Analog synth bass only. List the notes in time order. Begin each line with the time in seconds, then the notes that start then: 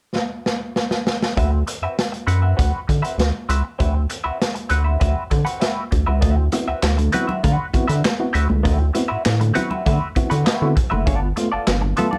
1.37 D2
1.82 F#2
2.27 F#2
2.59 D2
2.89 D3
3.18 D2
3.49 C#2
3.80 D2
4.25 D2
4.71 D2
5.01 D2
5.31 D3
5.92 D2
6.08 C#2
6.23 D2
6.69 D2
6.83 D2
7.44 D3
7.74 D3
7.90 D3
8.35 D2
8.51 C#2
8.65 D2
9.12 A2
9.26 A2
9.86 D3
10.16 D3
10.32 D3
10.62 D3
10.93 F#1
11.07 G1
11.53 G1
11.68 G1